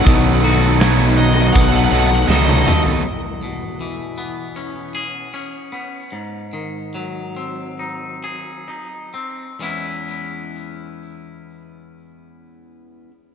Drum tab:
HH |o---o---o-------|----------------|----------------|----------------|
SD |----o------oo---|----------------|----------------|----------------|
T1 |-------------o--|----------------|----------------|----------------|
T2 |--------------o-|----------------|----------------|----------------|
FT |---------------o|----------------|----------------|----------------|
BD |o-------o-------|----------------|----------------|----------------|